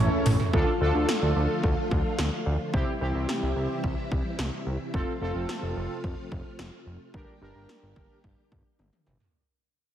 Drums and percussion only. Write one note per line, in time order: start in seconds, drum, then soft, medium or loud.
0.26 floor tom loud
0.26 open hi-hat medium
0.40 floor tom loud
0.53 kick loud
1.09 snare medium
1.64 kick medium
1.91 kick medium
2.19 snare medium
2.74 kick loud
3.29 snare medium
3.84 kick medium
4.12 kick medium
4.39 snare loud
4.94 kick loud
5.49 snare medium
6.04 kick medium
6.32 kick medium
6.59 snare loud
7.14 kick loud
7.69 snare medium
7.96 kick medium
8.24 kick medium
8.52 kick medium
8.79 high tom soft
8.93 mid tom medium
9.06 mid tom medium
9.20 floor tom medium